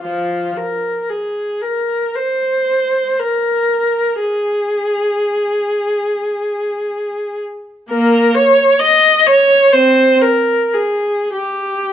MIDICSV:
0, 0, Header, 1, 2, 480
1, 0, Start_track
1, 0, Tempo, 1084991
1, 14, Time_signature, 4, 2, 24, 8
1, 494, Tempo, 1045296
1, 1454, Tempo, 1006711
1, 1934, Tempo, 941915
1, 2894, Tempo, 909091
1, 4814, Tempo, 1018676
1, 5294, Tempo, 1232033
1, 5752, End_track
2, 0, Start_track
2, 0, Title_t, "Viola"
2, 0, Program_c, 0, 41
2, 12, Note_on_c, 0, 65, 42
2, 14, Note_on_c, 0, 53, 35
2, 238, Note_off_c, 0, 65, 0
2, 239, Note_off_c, 0, 53, 0
2, 253, Note_on_c, 0, 70, 44
2, 487, Note_on_c, 0, 68, 41
2, 492, Note_off_c, 0, 70, 0
2, 724, Note_on_c, 0, 70, 48
2, 730, Note_off_c, 0, 68, 0
2, 969, Note_off_c, 0, 70, 0
2, 970, Note_on_c, 0, 72, 56
2, 1447, Note_on_c, 0, 70, 58
2, 1451, Note_off_c, 0, 72, 0
2, 1927, Note_on_c, 0, 68, 58
2, 1930, Note_off_c, 0, 70, 0
2, 3582, Note_off_c, 0, 68, 0
2, 3845, Note_on_c, 0, 58, 63
2, 3847, Note_on_c, 0, 70, 76
2, 4068, Note_off_c, 0, 58, 0
2, 4069, Note_off_c, 0, 70, 0
2, 4084, Note_on_c, 0, 73, 76
2, 4318, Note_on_c, 0, 75, 85
2, 4320, Note_off_c, 0, 73, 0
2, 4561, Note_off_c, 0, 75, 0
2, 4566, Note_on_c, 0, 73, 86
2, 4813, Note_on_c, 0, 72, 81
2, 4814, Note_on_c, 0, 60, 62
2, 4816, Note_off_c, 0, 73, 0
2, 5030, Note_off_c, 0, 60, 0
2, 5043, Note_on_c, 0, 70, 70
2, 5045, Note_off_c, 0, 72, 0
2, 5287, Note_on_c, 0, 68, 63
2, 5293, Note_off_c, 0, 70, 0
2, 5520, Note_on_c, 0, 67, 57
2, 5521, Note_off_c, 0, 68, 0
2, 5752, Note_off_c, 0, 67, 0
2, 5752, End_track
0, 0, End_of_file